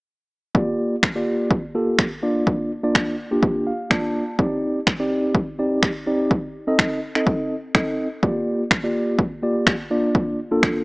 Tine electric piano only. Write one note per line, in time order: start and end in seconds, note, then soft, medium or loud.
0.55 0.95 A#3 medium
0.55 0.95 F4 medium
0.55 0.95 G4 medium
0.55 0.95 D5 medium
1.15 1.54 A#3 medium
1.15 1.54 F4 medium
1.15 1.55 G4 medium
1.15 1.55 D5 medium
1.75 2.07 A#3 medium
1.75 2.07 F4 medium
1.75 2.07 G4 medium
1.75 2.07 A4 medium
2.22 2.71 A#3 medium
2.22 2.71 D4 medium
2.22 2.71 F4 medium
2.22 2.71 D5 loud
2.83 3.15 A#3 medium
2.83 3.15 D4 medium
2.83 3.15 F4 medium
2.83 3.15 D5 medium
3.31 3.70 A#3 medium
3.31 3.70 D4 medium
3.31 3.70 F4 medium
3.31 3.71 G4 medium
3.67 3.89 F5 medium
3.90 4.23 A#3 medium
3.90 4.23 D4 medium
3.90 4.23 F4 medium
3.90 4.23 D5 medium
3.90 4.35 A5 medium
4.39 4.79 C4 medium
4.39 4.79 D#4 medium
4.39 4.79 G4 medium
4.39 4.79 D5 loud
4.99 5.38 C4 medium
4.99 5.38 D#4 medium
4.99 5.39 G4 medium
4.99 5.39 D5 medium
5.59 5.91 C4 medium
5.59 5.91 D#4 medium
5.59 5.91 G4 medium
5.59 5.91 D5 medium
6.07 6.31 C4 medium
6.07 6.31 D#4 medium
6.07 6.31 G4 medium
6.07 6.31 D5 loud
6.67 6.99 C4 medium
6.67 6.99 D#4 medium
6.67 6.99 A4 medium
6.67 6.99 D#5 loud
7.15 7.54 C4 medium
7.15 7.55 D#4 medium
7.15 7.55 A4 medium
7.15 7.55 D#5 medium
7.75 8.07 C4 medium
7.75 8.07 D#4 medium
7.75 8.07 A4 medium
7.75 8.07 D#5 medium
8.23 8.63 A#3 medium
8.23 8.63 F4 medium
8.23 8.63 G4 medium
8.23 8.63 D5 medium
8.83 9.22 A#3 medium
8.83 9.23 F4 medium
8.83 9.23 G4 medium
8.83 9.23 D5 medium
9.43 9.75 A#3 medium
9.43 9.75 F4 medium
9.43 9.75 G4 medium
9.43 9.75 D5 medium
9.91 10.39 A#3 medium
9.91 10.39 D4 medium
9.91 10.39 F4 medium
9.91 10.39 D5 loud
10.51 10.83 A#3 medium
10.51 10.83 D4 medium
10.51 10.83 F4 medium
10.51 10.83 A4 loud